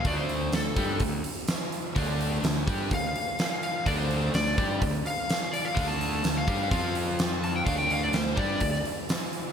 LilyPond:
<<
  \new Staff \with { instrumentName = "Electric slide guitar" } { \time 4/4 \key d \minor \tempo 4 = 126 d''16 c''8. a'4 r2 | r2 f''4. f''8 | d''16 c''8. d''4 r8 f''4 d''16 f''16~ | f''16 a''4 f''8. f''8 r4 a''16 g''16 |
f''16 g''16 f''16 d''16 c''8 d''4 r4. | }
  \new Staff \with { instrumentName = "Overdriven electric guitar" } { \time 4/4 \key d \minor <d a d'>4 <d a>8 <g d' g'>8 <d a>8 r4. | <d a d'>4 <d a>8 <g d' g'>8 <d a>8 r4. | <d a d'>4 <d a>8 <g d' g'>8 <d a>8 r4. | <d a d'>4 <d a>8 <g d' g'>8 <f c' f'>2 |
<d a d'>4 <d a>8 <g d' g'>8 <d a>8 r4. | }
  \new Staff \with { instrumentName = "Fingered electric bass" } { \clef bass \time 4/4 \key d \minor d,4 d,8 g,8 d,8 r4. | d,4 d,8 g,8 d,8 r4. | d,4 d,8 g,8 d,8 r4. | d,4 d,8 g,8 f,2 |
d,4 d,8 g,8 d,8 r4. | }
  \new DrumStaff \with { instrumentName = "Drums" } \drummode { \time 4/4 <hho bd>8 hho8 <hho sn>8 <hho bd>8 <hho bd>8 hho8 <hho sn>8 hho8 | <hho bd>8 hho8 <hho sn>8 <hho bd>8 <hho bd>8 hho8 <hho sn>8 hho8 | <hho bd>8 hho8 <hho sn>8 <hho bd>8 <hho bd>8 hho8 <hho sn>8 hho8 | <hho bd>8 hho8 <hho sn>8 <hho bd>8 <hho bd>8 hho8 <hho sn>8 hho8 |
<hho bd>8 hho8 <hho sn>8 <hho bd>8 <hho bd>16 sn16 hho8 <hho sn>8 hho8 | }
>>